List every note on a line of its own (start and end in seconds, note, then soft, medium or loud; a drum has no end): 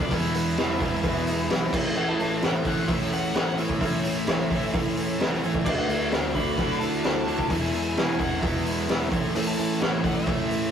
0.00 0.10 D3 medium
0.00 0.12 A3 medium
0.00 0.12 B3 medium
0.00 0.12 D4 medium
0.00 0.11 E4 medium
0.00 0.11 F#4 loud
0.00 0.13 D5 medium
0.00 kick loud
0.11 0.32 E1 loud
0.11 0.34 E2 medium
0.11 0.35 B2 medium
0.11 0.35 E3 medium
0.11 0.35 G#3 medium
0.11 0.34 B3 medium
0.11 1.71 E4 medium
0.11 0.33 E4 medium
0.11 1.71 G#4 medium
0.11 1.71 B4 medium
0.11 1.71 E5 medium
0.11 1.74 E5 loud
0.11 kick loud
0.11 open hi-hat medium
0.11 cowbell loud
0.34 0.55 E1 loud
0.34 0.56 E3 soft
0.34 0.57 G#3 soft
0.34 0.58 B3 soft
0.34 0.57 E4 medium
0.34 open hi-hat medium
0.34 cowbell medium
0.57 0.79 E1 loud
0.57 0.80 E2 medium
0.57 0.80 B2 loud
0.57 0.80 E3 medium
0.57 0.81 G#3 medium
0.57 0.81 B3 medium
0.57 0.79 E4 medium
0.57 snare loud
0.57 open hi-hat medium
0.57 cowbell medium
0.80 1.02 E1 medium
0.80 1.02 E2 medium
0.80 1.03 B2 medium
0.80 1.03 E3 soft
0.80 1.04 G#3 medium
0.80 1.04 B3 medium
0.80 1.04 E4 medium
0.80 kick medium
0.80 open hi-hat medium
1.03 1.46 E1 medium
1.03 1.27 E2 medium
1.03 1.27 B2 loud
1.03 1.27 E3 medium
1.03 1.27 G#3 loud
1.03 1.27 B3 medium
1.03 1.25 E4 loud
1.03 kick loud
1.03 open hi-hat medium
1.03 cowbell loud
1.27 1.48 E3 soft
1.27 1.49 G#3 medium
1.27 1.50 B3 medium
1.27 1.50 E4 medium
1.27 open hi-hat medium
1.27 cowbell medium
1.49 1.71 B1 medium
1.49 1.71 E2 medium
1.49 1.72 B2 medium
1.49 1.73 E3 medium
1.49 1.73 G#3 medium
1.49 1.74 B3 medium
1.49 1.72 E4 medium
1.49 snare loud
1.49 open hi-hat medium
1.49 cowbell medium
1.73 1.94 A1 medium
1.73 1.95 A2 medium
1.73 1.96 E3 medium
1.73 1.95 A3 medium
1.73 1.96 C#4 medium
1.73 1.96 E4 medium
1.73 5.62 E4 medium
1.73 5.62 A4 medium
1.73 5.62 C#5 medium
1.73 5.62 E5 medium
1.73 kick loud
1.73 crash loud
1.95 2.17 A1 loud
1.95 2.19 A2 medium
1.95 2.19 E3 medium
1.95 2.19 A3 medium
1.95 2.19 C#4 medium
1.95 2.18 E4 medium
1.95 2.09 F#5 loud
1.95 cowbell loud
2.08 2.20 E4 medium
2.08 2.20 A5 loud
2.19 2.41 A1 loud
2.19 2.42 A3 soft
2.19 2.43 C#4 medium
2.19 2.42 E4 soft
2.19 2.44 A5 loud
2.19 open hi-hat medium
2.42 2.64 A1 medium
2.42 2.65 A2 medium
2.42 2.65 E3 medium
2.42 2.66 A3 medium
2.42 2.66 C#4 loud
2.42 2.54 C#4 medium
2.42 2.64 E4 medium
2.42 2.54 F#5 medium
2.42 snare loud
2.42 open hi-hat medium
2.42 cowbell medium
2.55 2.67 B3 medium
2.55 2.67 E5 medium
2.65 2.87 A1 medium
2.65 2.86 A2 medium
2.65 2.88 E3 medium
2.65 2.88 A3 medium
2.65 2.89 C#4 medium
2.65 2.88 E4 medium
2.65 2.88 F#5 medium
2.65 kick medium
2.65 open hi-hat medium
2.88 3.31 A1 medium
2.88 3.12 A2 medium
2.88 3.12 E3 medium
2.88 3.12 A3 medium
2.88 3.12 C#4 medium
2.88 3.10 E4 loud
2.88 3.12 E5 medium
2.88 kick loud
2.88 open hi-hat medium
2.88 cowbell medium
3.11 3.35 A3 soft
3.11 3.35 C#4 soft
3.11 3.35 E4 medium
3.11 3.35 F#5 medium
3.11 open hi-hat medium
3.11 cowbell medium
3.34 3.77 A1 medium
3.34 3.55 A2 medium
3.34 3.58 E3 medium
3.34 3.59 A3 medium
3.34 3.58 C#4 medium
3.34 3.58 E4 loud
3.34 3.58 F#5 loud
3.34 snare loud
3.34 open hi-hat medium
3.34 cowbell medium
3.57 3.79 A2 medium
3.57 3.80 E3 medium
3.57 3.80 B3 medium
3.57 3.82 C#4 medium
3.57 3.81 E4 medium
3.57 3.80 E5 medium
3.57 open hi-hat medium
3.61 3.81 A3 soft
3.69 kick medium
3.81 4.02 A1 loud
3.81 4.04 A2 medium
3.81 4.05 E3 medium
3.81 4.05 A3 medium
3.81 4.05 C#4 medium
3.81 4.03 E4 medium
3.81 4.70 E5 medium
3.81 kick loud
3.81 open hi-hat medium
3.81 cowbell medium
4.04 4.26 A1 loud
4.04 4.27 A3 soft
4.04 4.28 C#4 soft
4.04 4.27 E4 medium
4.04 open hi-hat medium
4.04 cowbell medium
4.27 4.49 A1 loud
4.27 4.48 A2 medium
4.27 4.50 E3 medium
4.27 4.51 A3 medium
4.27 4.51 C#4 medium
4.27 4.49 E4 medium
4.27 snare loud
4.27 open hi-hat medium
4.27 cowbell medium
4.50 4.72 A1 medium
4.50 4.71 A2 medium
4.50 4.72 E3 medium
4.50 4.73 A3 medium
4.50 4.74 C#4 medium
4.50 4.73 E4 medium
4.50 kick medium
4.50 open hi-hat medium
4.73 5.16 A1 medium
4.73 4.97 A2 loud
4.73 4.97 E3 loud
4.73 4.97 A3 medium
4.73 4.97 C#4 medium
4.73 4.95 E4 loud
4.73 kick loud
4.73 open hi-hat medium
4.73 cowbell loud
4.96 5.18 A3 medium
4.96 5.19 C#4 medium
4.96 5.20 E4 medium
4.96 open hi-hat medium
4.96 cowbell medium
5.19 5.42 A1 medium
5.19 5.41 A2 medium
5.19 5.42 E3 medium
5.19 5.43 A3 medium
5.19 5.42 C#4 medium
5.19 5.40 E4 medium
5.19 snare loud
5.19 open hi-hat medium
5.19 cowbell medium
5.41 5.64 A1 medium
5.41 5.64 A2 medium
5.41 5.65 E3 loud
5.41 5.65 A3 medium
5.41 5.66 C#4 medium
5.41 5.65 E4 medium
5.41 open hi-hat medium
5.54 kick medium
5.65 5.87 D2 medium
5.65 5.89 D3 medium
5.65 5.89 F#3 medium
5.65 5.89 A3 medium
5.65 5.89 D4 medium
5.65 5.87 E4 medium
5.65 7.48 F#4 medium
5.65 6.12 F#4 loud
5.65 7.48 A4 medium
5.65 5.70 D5 loud
5.65 7.48 D5 medium
5.65 7.48 E5 medium
5.65 kick loud
5.65 cowbell loud
5.65 crash loud
5.77 5.89 D4 medium
5.77 5.89 F#5 medium
5.88 6.10 D2 loud
5.88 6.12 A3 soft
5.88 6.13 D4 soft
5.88 6.12 E4 medium
5.88 6.36 E5 loud
5.88 open hi-hat medium
5.88 cowbell medium
6.11 6.33 D2 loud
6.11 6.34 D3 medium
6.11 6.35 F#3 medium
6.11 6.36 A3 medium
6.11 6.36 D4 medium
6.11 6.34 E4 medium
6.11 6.35 F#4 loud
6.11 snare loud
6.11 open hi-hat medium
6.11 cowbell medium
6.35 6.56 D2 medium
6.35 6.57 D3 medium
6.35 6.58 A3 soft
6.35 6.59 D4 soft
6.35 6.58 E4 medium
6.35 6.78 F#4 medium
6.35 6.58 F#4 medium
6.35 6.78 B5 loud
6.35 kick medium
6.35 open hi-hat medium
6.58 7.01 D2 medium
6.58 6.81 D3 medium
6.58 6.82 F#3 medium
6.58 6.82 A3 medium
6.58 6.82 D4 medium
6.58 6.80 E4 medium
6.58 7.05 F#4 loud
6.58 kick loud
6.58 open hi-hat medium
6.58 cowbell loud
6.79 7.05 D4 medium
6.79 7.04 E4 medium
6.79 7.46 A5 loud
6.79 open hi-hat medium
6.79 cowbell medium
6.84 7.04 A3 soft
7.04 7.47 D2 medium
7.04 7.26 D3 medium
7.04 7.27 F#3 medium
7.04 7.28 A3 medium
7.04 7.28 D4 medium
7.04 7.26 E4 medium
7.04 7.28 F#4 medium
7.04 snare loud
7.04 open hi-hat medium
7.04 cowbell medium
7.27 7.49 D3 medium
7.27 7.52 A3 soft
7.27 7.51 D4 medium
7.27 7.50 E4 medium
7.27 7.50 F#4 loud
7.27 open hi-hat medium
7.39 kick medium
7.49 7.72 E1 loud
7.49 7.74 E2 medium
7.49 7.74 B2 medium
7.49 7.74 E3 medium
7.49 7.74 G#3 medium
7.49 7.74 B3 medium
7.49 9.10 E4 medium
7.49 9.10 G#4 medium
7.49 9.10 B4 medium
7.49 9.10 E5 medium
7.49 8.21 G#5 loud
7.49 kick loud
7.49 open hi-hat medium
7.49 cowbell loud
7.53 7.73 E4 medium
7.73 7.95 E1 loud
7.73 7.96 E3 soft
7.73 7.97 G#3 medium
7.73 7.98 B3 medium
7.73 7.97 E4 medium
7.73 open hi-hat medium
7.73 cowbell medium
7.96 8.18 E1 loud
7.96 8.18 E2 medium
7.96 8.18 B2 medium
7.96 8.20 E3 medium
7.96 8.21 G#3 medium
7.96 8.20 B3 medium
7.96 snare loud
7.96 open hi-hat medium
7.96 cowbell medium
8.00 8.19 E4 medium
8.19 8.41 E1 medium
8.19 8.40 E2 medium
8.19 8.41 B2 medium
8.19 8.42 E3 medium
8.19 8.44 G#3 soft
8.19 8.44 B3 medium
8.19 8.41 C#4 medium
8.19 8.43 E4 medium
8.19 8.40 F#5 medium
8.19 kick medium
8.19 open hi-hat medium
8.24 8.43 E3 medium
8.41 8.85 E1 medium
8.41 8.66 E2 medium
8.41 8.66 B2 medium
8.41 8.67 E3 medium
8.41 8.67 G#3 loud
8.41 9.07 E5 medium
8.41 kick loud
8.41 open hi-hat medium
8.41 cowbell loud
8.45 8.66 B3 medium
8.45 8.64 E4 medium
8.66 8.88 E3 soft
8.66 8.89 G#3 medium
8.66 8.89 B3 medium
8.66 8.89 E4 medium
8.66 open hi-hat medium
8.66 cowbell medium
8.88 9.10 E1 medium
8.88 9.10 E2 medium
8.88 9.10 B2 medium
8.88 9.12 E3 medium
8.88 9.13 G#3 medium
8.88 9.13 B3 medium
8.88 snare loud
8.88 open hi-hat medium
8.88 cowbell medium
8.92 9.10 E4 medium
9.10 9.33 A1 medium
9.10 9.34 A2 loud
9.10 9.34 E3 loud
9.10 9.35 C#4 medium
9.10 10.71 E4 medium
9.10 9.35 E4 medium
9.10 10.71 A4 medium
9.10 10.71 C#5 medium
9.10 10.71 E5 medium
9.10 kick loud
9.10 open hi-hat medium
9.15 9.34 A3 medium
9.34 9.57 A1 loud
9.34 9.58 A2 medium
9.34 9.58 E3 medium
9.34 9.58 A3 medium
9.34 9.57 C#4 medium
9.34 9.55 E4 medium
9.34 9.47 E5 loud
9.34 open hi-hat loud
9.34 cowbell loud
9.47 9.58 E4 medium
9.47 9.57 A5 loud
9.57 9.79 A1 loud
9.57 9.80 A3 soft
9.57 9.81 C#4 soft
9.57 9.80 E4 medium
9.57 9.82 A5 loud
9.57 open hi-hat medium
9.57 cowbell medium
9.80 10.02 A1 loud
9.80 10.03 A2 medium
9.80 10.04 E3 medium
9.80 10.04 A3 medium
9.80 10.04 C#4 medium
9.80 10.02 E4 medium
9.80 9.93 F#5 loud
9.80 snare loud
9.80 open hi-hat medium
9.80 cowbell medium
9.93 10.04 B3 medium
9.93 10.04 E5 medium
10.03 10.25 A1 medium
10.03 10.25 A2 medium
10.03 10.26 E3 medium
10.03 10.27 A3 medium
10.03 10.28 C#4 medium
10.03 10.27 E4 medium
10.03 10.15 F#5 medium
10.03 kick medium
10.03 open hi-hat medium
10.15 10.71 A3 medium
10.15 10.71 E5 medium
10.27 10.70 A1 medium
10.27 10.50 A2 medium
10.27 10.51 E3 medium
10.27 10.51 A3 medium
10.27 10.51 C#4 medium
10.27 10.49 E4 medium
10.27 kick loud
10.27 open hi-hat medium
10.27 cowbell medium
10.50 10.71 A3 soft
10.50 10.71 C#4 medium
10.50 10.71 E4 medium
10.50 open hi-hat medium
10.50 cowbell medium